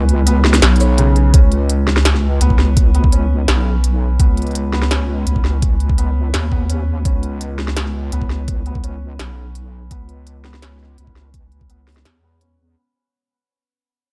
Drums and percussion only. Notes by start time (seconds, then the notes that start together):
0.09 closed hi-hat
0.27 closed hi-hat
0.44 snare
0.54 snare, shaker
0.62 snare, closed hi-hat
0.76 closed hi-hat
0.80 shaker
0.98 closed hi-hat
1.16 closed hi-hat
1.34 kick, closed hi-hat
1.52 closed hi-hat
1.70 closed hi-hat
1.87 snare
1.97 snare
2.05 snare, closed hi-hat
2.14 snare
2.41 closed hi-hat
2.50 kick
2.59 snare
2.77 kick, closed hi-hat
2.95 closed hi-hat
3.04 kick
3.12 closed hi-hat
3.48 snare, closed hi-hat
3.84 closed hi-hat
4.20 kick, closed hi-hat
4.37 closed hi-hat
4.42 closed hi-hat
4.47 closed hi-hat
4.51 closed hi-hat
4.55 closed hi-hat
4.73 snare
4.82 snare
4.91 snare, closed hi-hat
5.27 closed hi-hat
5.36 kick
5.45 snare
5.62 kick, closed hi-hat
5.80 closed hi-hat
5.89 kick
5.98 closed hi-hat
6.34 snare, closed hi-hat
6.52 kick
6.70 closed hi-hat
7.05 kick, closed hi-hat
7.23 closed hi-hat
7.41 closed hi-hat
7.59 snare
7.68 snare
7.77 snare, closed hi-hat
7.86 snare
8.12 closed hi-hat
8.22 kick
8.30 snare
8.48 kick, closed hi-hat
8.66 closed hi-hat
8.75 kick
8.84 closed hi-hat
9.19 snare, closed hi-hat
9.55 closed hi-hat
9.91 kick, closed hi-hat
10.09 closed hi-hat
10.27 closed hi-hat
10.45 snare
10.54 snare
10.62 snare, closed hi-hat
10.72 snare
10.77 snare
10.83 snare
10.98 closed hi-hat
11.07 kick
11.16 snare
11.34 kick, closed hi-hat
11.52 closed hi-hat
11.61 kick
11.70 closed hi-hat
11.88 snare, closed hi-hat
11.90 closed hi-hat
11.92 closed hi-hat
11.94 snare, closed hi-hat
12.05 snare, closed hi-hat
12.41 closed hi-hat